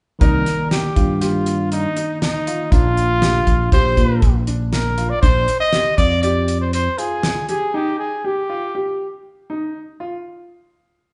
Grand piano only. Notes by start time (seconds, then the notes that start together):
0.22 D#4
0.71 G4
0.96 F4
1.21 G4
1.97 D#4
2.47 F4
2.72 D4
3.22 G4
3.47 F4
3.73 G4
4.47 D4
4.98 F4
5.23 D4
5.73 G4
5.98 F4
6.23 G4
6.98 F4
7.49 G4
7.74 D#4
8.24 G4
8.49 F4
8.75 G4
9.50 D#4
10.00 F4